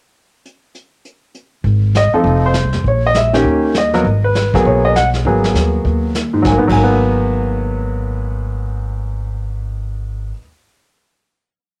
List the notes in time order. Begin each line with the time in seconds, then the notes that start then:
0.45 closed hi-hat
0.75 closed hi-hat
1.05 closed hi-hat
1.35 closed hi-hat
1.64 G#1, brush sweep, kick
1.95 D#5, snare, hi-hat pedal
2.14 F3 C4 D#4 A4
2.24 F1, brush sweep, kick
2.46 C5
2.54 snare, hi-hat pedal
2.63 C2
2.73 F2, snare
2.84 A#1 C#5, brush sweep, kick
3.07 D#5
3.14 E5, snare, hi-hat pedal
3.33 D#3 A#3 C#4 G4, snare
3.45 D#2, brush sweep, kick
3.74 D#5, snare, hi-hat pedal
3.94 F#3 A#3 B3 A#4, snare
4.04 G#1, brush sweep, kick
4.24 B4
4.35 snare, hi-hat pedal
4.53 A1 F#3 A#3 B3 G#4, kick, snare
4.65 B1 C#5, brush sweep, kick
4.85 D#5
4.96 F#5, snare, hi-hat pedal
5.14 snare
5.25 G#1 F#3 A#3 B3 G#4, brush sweep, kick
5.44 snare
5.54 D#2, snare, hi-hat pedal
5.84 D#2, brush sweep, kick
6.15 snare, hi-hat pedal
6.33 G#2
6.42 G#1 F#3, kick, snare
6.47 A#3 G#5
6.58 G#2 B3
6.67 G#1 F#3, kick, crash
6.72 A#3 G#5
6.83 B3